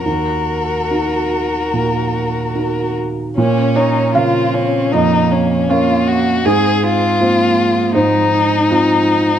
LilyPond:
<<
  \new Staff \with { instrumentName = "Felt piano" } { \time 4/4 \key bes \minor \tempo 4 = 78 << { r1 | r8 des''8 f''4 ees''4 des''4 | aes'2 c''2 | } \\ { ees,4 <ees' ges' bes'>4 bes,4 <ees' ges' bes'>4 | bes,4 <des f' bes'>4 f,4 <des' bes' f''>4 | aes,4 <c' f' c''>4 aes,4 <c' f' c''>4 | } >> }
  \new Staff \with { instrumentName = "Violin" } { \time 4/4 \key bes \minor bes'2.~ bes'8 r8 | des'8 ees'8 f'8 des'8 ees'8 des'8 f'8 ges'8 | aes'8 f'4. ees'2 | }
  \new Staff \with { instrumentName = "Cello" } { \time 4/4 \key bes \minor ges'2.~ ges'8 r8 | des'4 c'4 bes4 bes4 | c'8 c'8 bes4 aes8 ees'4. | }
>>